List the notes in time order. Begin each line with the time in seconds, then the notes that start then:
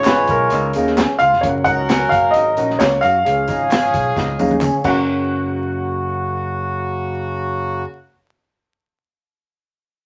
Already playing: G#1 C#3 G#3 C#4 F4 G#4 C#5 F5
0.04 C#4 B4, snare, clap, closed hi-hat, tambourine
0.27 B1 A#4, kick, closed hi-hat, tambourine
0.50 C#2 D#4, closed hi-hat, tambourine
0.73 D#2 C#4 D#4 G#4 F5, closed hi-hat, tambourine
0.87 snare
0.97 C#4, snare, clap, closed hi-hat, tambourine
1.19 C#2 F4 F5, closed hi-hat, tambourine
1.32 F1, snare
1.41 F#1 F#3 C#4 A#4 C#5 F5, kick, closed hi-hat
1.49 F#5
1.64 C#2 D#4 F#5, kick, closed hi-hat, tambourine
1.89 C#4, snare, clap, closed hi-hat, tambourine
2.09 F#1 F5, kick, closed hi-hat
2.14 tambourine
2.31 G#1 D#4 D#5, closed hi-hat
2.36 tambourine
2.57 A#1 C#4 D#4 A#4 F#5, closed hi-hat, tambourine
2.70 snare
2.79 C#2 A#3 C#5, snare, clap, closed hi-hat, tambourine
3.01 F#2 F#4 F5, closed hi-hat, tambourine
3.24 C#2 C#3 F3 C#4 G#4 F5, closed hi-hat
3.48 G#1 D#4, kick, closed hi-hat, tambourine
3.70 C#4, snare, clap, closed hi-hat, tambourine
3.94 B1, kick, closed hi-hat, tambourine
4.16 C#2 D#4, kick, snare, tambourine
4.38 D#2 C#4 D#4 G#4 F5, high tom, tambourine
4.51 high tom
4.61 C#4, clap, mid tom, tambourine
4.82 F#1 F#2 C#3 C#4 F#4 A#4 F#5, kick, crash, tambourine
4.86 A#3 F#5